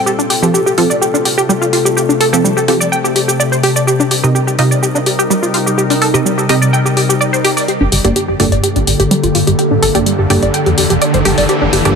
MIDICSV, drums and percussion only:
0, 0, Header, 1, 2, 480
1, 0, Start_track
1, 0, Key_signature, -2, "minor"
1, 0, Tempo, 476190
1, 65, Time_signature, 4, 2, 24, 8
1, 12049, End_track
2, 0, Start_track
2, 0, Title_t, "Drums"
2, 70, Note_on_c, 9, 82, 49
2, 171, Note_off_c, 9, 82, 0
2, 196, Note_on_c, 9, 82, 31
2, 296, Note_off_c, 9, 82, 0
2, 304, Note_on_c, 9, 46, 89
2, 404, Note_off_c, 9, 46, 0
2, 436, Note_on_c, 9, 82, 60
2, 536, Note_off_c, 9, 82, 0
2, 551, Note_on_c, 9, 82, 52
2, 652, Note_off_c, 9, 82, 0
2, 676, Note_on_c, 9, 82, 31
2, 777, Note_off_c, 9, 82, 0
2, 784, Note_on_c, 9, 46, 96
2, 884, Note_off_c, 9, 46, 0
2, 915, Note_on_c, 9, 82, 61
2, 1016, Note_off_c, 9, 82, 0
2, 1031, Note_on_c, 9, 82, 52
2, 1132, Note_off_c, 9, 82, 0
2, 1156, Note_on_c, 9, 82, 31
2, 1257, Note_off_c, 9, 82, 0
2, 1264, Note_on_c, 9, 46, 91
2, 1365, Note_off_c, 9, 46, 0
2, 1396, Note_on_c, 9, 82, 60
2, 1497, Note_off_c, 9, 82, 0
2, 1510, Note_on_c, 9, 82, 51
2, 1611, Note_off_c, 9, 82, 0
2, 1636, Note_on_c, 9, 82, 31
2, 1737, Note_off_c, 9, 82, 0
2, 1744, Note_on_c, 9, 46, 94
2, 1845, Note_off_c, 9, 46, 0
2, 1876, Note_on_c, 9, 82, 61
2, 1977, Note_off_c, 9, 82, 0
2, 1991, Note_on_c, 9, 82, 52
2, 2092, Note_off_c, 9, 82, 0
2, 2115, Note_on_c, 9, 82, 31
2, 2216, Note_off_c, 9, 82, 0
2, 2224, Note_on_c, 9, 46, 89
2, 2324, Note_off_c, 9, 46, 0
2, 2355, Note_on_c, 9, 82, 63
2, 2456, Note_off_c, 9, 82, 0
2, 2472, Note_on_c, 9, 82, 53
2, 2572, Note_off_c, 9, 82, 0
2, 2596, Note_on_c, 9, 82, 32
2, 2697, Note_off_c, 9, 82, 0
2, 2704, Note_on_c, 9, 46, 93
2, 2805, Note_off_c, 9, 46, 0
2, 2836, Note_on_c, 9, 82, 64
2, 2937, Note_off_c, 9, 82, 0
2, 2951, Note_on_c, 9, 82, 54
2, 3052, Note_off_c, 9, 82, 0
2, 3075, Note_on_c, 9, 82, 32
2, 3176, Note_off_c, 9, 82, 0
2, 3183, Note_on_c, 9, 46, 88
2, 3284, Note_off_c, 9, 46, 0
2, 3315, Note_on_c, 9, 82, 61
2, 3416, Note_off_c, 9, 82, 0
2, 3431, Note_on_c, 9, 82, 55
2, 3531, Note_off_c, 9, 82, 0
2, 3556, Note_on_c, 9, 82, 31
2, 3657, Note_off_c, 9, 82, 0
2, 3663, Note_on_c, 9, 46, 91
2, 3764, Note_off_c, 9, 46, 0
2, 3795, Note_on_c, 9, 82, 62
2, 3896, Note_off_c, 9, 82, 0
2, 3911, Note_on_c, 9, 82, 52
2, 4011, Note_off_c, 9, 82, 0
2, 4035, Note_on_c, 9, 82, 32
2, 4135, Note_off_c, 9, 82, 0
2, 4143, Note_on_c, 9, 46, 91
2, 4244, Note_off_c, 9, 46, 0
2, 4275, Note_on_c, 9, 82, 63
2, 4376, Note_off_c, 9, 82, 0
2, 4391, Note_on_c, 9, 82, 55
2, 4492, Note_off_c, 9, 82, 0
2, 4515, Note_on_c, 9, 82, 33
2, 4616, Note_off_c, 9, 82, 0
2, 4623, Note_on_c, 9, 46, 93
2, 4724, Note_off_c, 9, 46, 0
2, 4755, Note_on_c, 9, 82, 64
2, 4856, Note_off_c, 9, 82, 0
2, 4871, Note_on_c, 9, 82, 57
2, 4972, Note_off_c, 9, 82, 0
2, 4996, Note_on_c, 9, 82, 33
2, 5097, Note_off_c, 9, 82, 0
2, 5104, Note_on_c, 9, 46, 91
2, 5205, Note_off_c, 9, 46, 0
2, 5236, Note_on_c, 9, 82, 62
2, 5337, Note_off_c, 9, 82, 0
2, 5351, Note_on_c, 9, 82, 55
2, 5452, Note_off_c, 9, 82, 0
2, 5477, Note_on_c, 9, 82, 32
2, 5578, Note_off_c, 9, 82, 0
2, 5584, Note_on_c, 9, 46, 93
2, 5685, Note_off_c, 9, 46, 0
2, 5717, Note_on_c, 9, 82, 63
2, 5818, Note_off_c, 9, 82, 0
2, 5832, Note_on_c, 9, 82, 52
2, 5933, Note_off_c, 9, 82, 0
2, 5950, Note_on_c, 9, 46, 54
2, 5957, Note_on_c, 9, 82, 31
2, 6051, Note_off_c, 9, 46, 0
2, 6058, Note_off_c, 9, 82, 0
2, 6065, Note_on_c, 9, 46, 89
2, 6166, Note_off_c, 9, 46, 0
2, 6197, Note_on_c, 9, 82, 65
2, 6298, Note_off_c, 9, 82, 0
2, 6313, Note_on_c, 9, 82, 54
2, 6413, Note_off_c, 9, 82, 0
2, 6437, Note_on_c, 9, 82, 31
2, 6538, Note_off_c, 9, 82, 0
2, 6545, Note_on_c, 9, 46, 94
2, 6646, Note_off_c, 9, 46, 0
2, 6676, Note_on_c, 9, 82, 63
2, 6777, Note_off_c, 9, 82, 0
2, 6792, Note_on_c, 9, 82, 53
2, 6893, Note_off_c, 9, 82, 0
2, 6917, Note_on_c, 9, 82, 33
2, 7017, Note_off_c, 9, 82, 0
2, 7025, Note_on_c, 9, 46, 92
2, 7126, Note_off_c, 9, 46, 0
2, 7156, Note_on_c, 9, 82, 62
2, 7257, Note_off_c, 9, 82, 0
2, 7272, Note_on_c, 9, 82, 55
2, 7373, Note_off_c, 9, 82, 0
2, 7397, Note_on_c, 9, 82, 31
2, 7498, Note_off_c, 9, 82, 0
2, 7505, Note_on_c, 9, 46, 89
2, 7606, Note_off_c, 9, 46, 0
2, 7630, Note_on_c, 9, 46, 52
2, 7638, Note_on_c, 9, 82, 62
2, 7731, Note_off_c, 9, 46, 0
2, 7738, Note_off_c, 9, 82, 0
2, 7745, Note_on_c, 9, 42, 62
2, 7846, Note_off_c, 9, 42, 0
2, 7985, Note_on_c, 9, 46, 94
2, 8085, Note_off_c, 9, 46, 0
2, 8110, Note_on_c, 9, 42, 51
2, 8210, Note_off_c, 9, 42, 0
2, 8225, Note_on_c, 9, 42, 66
2, 8326, Note_off_c, 9, 42, 0
2, 8464, Note_on_c, 9, 46, 101
2, 8565, Note_off_c, 9, 46, 0
2, 8590, Note_on_c, 9, 42, 50
2, 8690, Note_off_c, 9, 42, 0
2, 8705, Note_on_c, 9, 42, 66
2, 8805, Note_off_c, 9, 42, 0
2, 8830, Note_on_c, 9, 42, 36
2, 8930, Note_off_c, 9, 42, 0
2, 8944, Note_on_c, 9, 46, 99
2, 9045, Note_off_c, 9, 46, 0
2, 9069, Note_on_c, 9, 42, 51
2, 9170, Note_off_c, 9, 42, 0
2, 9184, Note_on_c, 9, 42, 66
2, 9285, Note_off_c, 9, 42, 0
2, 9309, Note_on_c, 9, 42, 36
2, 9410, Note_off_c, 9, 42, 0
2, 9424, Note_on_c, 9, 46, 97
2, 9525, Note_off_c, 9, 46, 0
2, 9549, Note_on_c, 9, 42, 52
2, 9650, Note_off_c, 9, 42, 0
2, 9664, Note_on_c, 9, 42, 62
2, 9765, Note_off_c, 9, 42, 0
2, 9904, Note_on_c, 9, 46, 98
2, 10005, Note_off_c, 9, 46, 0
2, 10030, Note_on_c, 9, 42, 51
2, 10130, Note_off_c, 9, 42, 0
2, 10144, Note_on_c, 9, 42, 64
2, 10245, Note_off_c, 9, 42, 0
2, 10384, Note_on_c, 9, 46, 107
2, 10484, Note_off_c, 9, 46, 0
2, 10509, Note_on_c, 9, 42, 50
2, 10610, Note_off_c, 9, 42, 0
2, 10624, Note_on_c, 9, 42, 64
2, 10725, Note_off_c, 9, 42, 0
2, 10749, Note_on_c, 9, 42, 36
2, 10850, Note_off_c, 9, 42, 0
2, 10863, Note_on_c, 9, 46, 104
2, 10964, Note_off_c, 9, 46, 0
2, 10989, Note_on_c, 9, 42, 50
2, 11090, Note_off_c, 9, 42, 0
2, 11104, Note_on_c, 9, 42, 63
2, 11204, Note_off_c, 9, 42, 0
2, 11229, Note_on_c, 9, 42, 36
2, 11330, Note_off_c, 9, 42, 0
2, 11343, Note_on_c, 9, 46, 100
2, 11444, Note_off_c, 9, 46, 0
2, 11468, Note_on_c, 9, 46, 61
2, 11569, Note_off_c, 9, 46, 0
2, 11582, Note_on_c, 9, 42, 59
2, 11683, Note_off_c, 9, 42, 0
2, 11823, Note_on_c, 9, 46, 102
2, 11923, Note_off_c, 9, 46, 0
2, 11947, Note_on_c, 9, 42, 48
2, 12048, Note_off_c, 9, 42, 0
2, 12049, End_track
0, 0, End_of_file